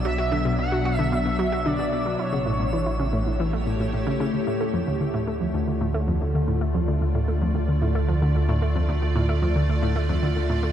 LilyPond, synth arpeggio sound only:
\new Staff \with { instrumentName = "Synth arpeggio sound" } { \clef bass \time 4/4 \key a \mixolydian \tempo 4 = 112 fis16 fis'16 d16 b,16 b,16 fis16 fis'16 d16 b,16 b,16 fis16 fis'16 d16 b,16 b,16 fis16 | e'16 cis16 a,16 a,16 e16 e'16 cis16 a,16 a,16 e16 a16 a,16 a,16 a,16 cis16 cis16 | \key d \minor d,16 a,16 a16 f,16 d,16 d,16 a,16 a16 f,16 d,16 d,16 a,16 a16 f,16 d,16 d,16 | a,16 a16 f,16 d,16 d,16 a,16 a16 f,16 d,16 d,16 a,16 a16 f,16 d,16 d,16 a,16 |
a16 f,16 d,16 d,16 a,16 a16 f,16 d,16 d,16 a,16 a16 f,16 d,16 d,16 a,16 a16 | }